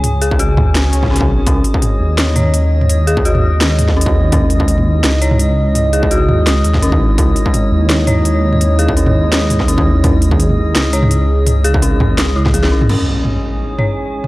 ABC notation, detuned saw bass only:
X:1
M:4/4
L:1/8
Q:"Swing 16ths" 1/4=168
K:C#m
V:1 name="Detuned saw bass" clef=bass
C,,3 D,, C,, C,,2 B,,, | C,, z2 D,,4- D,,- | D,,3 D,,4- D,,- | D,,3 D,, C,,4- |
C,,3 D,, C,, D,,2 G,,, | C,, z2 D,,4- D,,- | D,,3 D,,4- D,,- | D,,3 D,, C,,4- |
C,,3 D,, C,, C,,2 B,,, | z8 |]